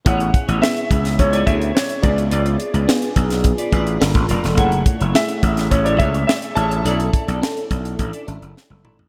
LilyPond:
<<
  \new Staff \with { instrumentName = "Grand piano" } { \time 4/4 \key a \major \tempo 4 = 106 fis''4 e''4 cis''16 d''16 e''8 cis''8 d''8~ | d''2~ d''8 r4. | fis''4 e''4 cis''16 d''16 e''8 e''8 a''8~ | a''2~ a''8 r4. | }
  \new Staff \with { instrumentName = "Clean electric guitar" } { \time 4/4 \key a \major <e' gis' cis''>16 r8 <e' gis' cis''>16 r4 r16 <e' gis' cis''>16 <e' gis' cis''>16 r8. <eis' b' d''>16 r16 | <eis' b' d''>16 r8 <eis' b' d''>16 r4 r16 <eis' b' d''>16 <eis' b' d''>16 r8. <f' bes' d''>16 r16 | <e' a' cis''>16 r8 <e' a' cis''>16 r4 r16 <e' a' cis''>16 <e' a' cis''>16 r8. <e' a' cis''>16 r16 | <e' a' d''>16 r8 <e' a' d''>16 r4 r16 <e' a' d''>16 r4 <e' a' d''>16 r16 | }
  \new Staff \with { instrumentName = "FM electric piano" } { \time 4/4 \key a \major <b cis' e' gis'>4 <b cis' e' gis'>4~ <b cis' e' gis'>16 r16 <b cis' e' gis'>4 <b d' eis' gis'>8~ | <b d' eis' gis'>8. r16 <b d' eis' gis'>4~ <b d' eis' gis'>16 r16 <b d' eis' gis'>8 <bes d' f' a'>4 | <a cis' e' gis'>4 <a cis' e' gis'>4~ <a cis' e' gis'>16 r16 <a cis' e' gis'>4~ <a cis' e' gis'>16 r16 | <cis' d' e' a'>4 <cis' d' e' a'>4~ <cis' d' e' a'>16 r16 <cis' d' e' a'>4~ <cis' d' e' a'>16 r16 | }
  \new Staff \with { instrumentName = "Slap bass" } { \clef bass \time 4/4 \key a \major a,,8 r16 a,,16 r8 cis,8 cis,8 d,8 r8 cis,8 | cis,8 r16 cis,16 r8 b,,8. r16 a,,8 g,,16 a,,16 f,,16 e,,16 | fis,,8 r16 fis,,16 r8 a,,8 a,,8 cis,8 r8 a,,8 | b,,8 r16 b,,16 r8 b,,8 a,,16 r16 gis,,16 fis,,16 r16 fis,,16 gis,,16 a,,16 | }
  \new DrumStaff \with { instrumentName = "Drums" } \drummode { \time 4/4 <hh bd>16 hh16 <hh bd>16 hh16 sn16 hh16 <hh bd>16 <hh sn>16 <hh bd>16 hh16 <hh bd>16 hh16 sn16 hh16 <hh bd>16 hh16 | hh16 hh16 hh16 hh16 sn16 hh16 <hh bd>16 <hh sn>16 <hh bd>16 hh16 <hh bd>16 hh16 sn16 <hh bd>16 hh16 <hh sn>16 | <hh bd>16 hh16 <hh bd>16 hh16 sn16 hh16 <hh bd>16 <hh sn>16 <hh bd>16 hh16 <hh bd>16 hh16 sn16 hh16 hh16 hh16 | hh16 hh16 <hh bd>16 hh16 sn16 hh16 <hh bd>16 hh16 <hh bd>16 hh16 hh16 hh16 sn16 tommh16 toml16 tomfh16 | }
>>